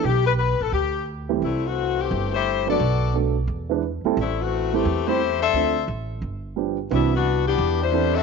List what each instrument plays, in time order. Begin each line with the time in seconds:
0.04 upright bass B1, saxophone section G4
0.27 saxophone section B4
0.39 saxophone section B4
0.60 upright bass A1, saxophone section A4
0.72 upright bass D2, saxophone section G4
1.29 upright piano E3 G3 A3 C4 G4
1.42 upright bass C2, saxophone section G3 A3 C4 E4
1.67 saxophone section E3 A3 C4 F#4
2.01 saxophone section E3 A3 C4 G4
2.11 upright bass G1
2.35 saxophone section A3 E4 G4 C5
2.67 upright piano F#3 A3 B3 D4 A4, saxophone section B3 A4 D5
2.71 saxophone section F#4
2.79 upright bass B1
3.14 upright piano F#3 A3 B3 D4 A4
3.47 upright bass E2
3.69 upright piano E3 G#3 B3 D4 B4
4.04 upright piano G3 A3 C4 E4 A4, muted upright bass stroke
4.17 upright bass A1, saxophone section A3 E4
4.21 saxophone section G3 C4
4.42 saxophone section E3 A3 C4 F#4
4.73 saxophone section E3 A3 C4 G4, upright piano G3 A3 C4 E4 A4
4.85 upright bass E2
5.07 upright piano G3 A3 C4 E4 C5, saxophone section A3 E4 G4 C5
5.42 saxophone section D4 A4 C5 E5
5.53 upright bass D2, upright piano F3 A3 C4 D4 A4
5.88 upright bass A1
6.22 upright bass G1
6.56 upright piano F3 G3 B3 D4 G4
6.90 upright bass C2, upright piano E3 B3 C4 D4 F#4, saxophone section G3 B3 D4 E4
7.15 saxophone section E3 B3 D4 F#4
7.47 saxophone section E3 B3 D4 G4
7.58 upright bass E2
7.83 saxophone section G3 D4 E4 C5
7.92 upright piano E3 B3 C4 D4 A4
8.16 saxophone section C4 F#4 A4 E5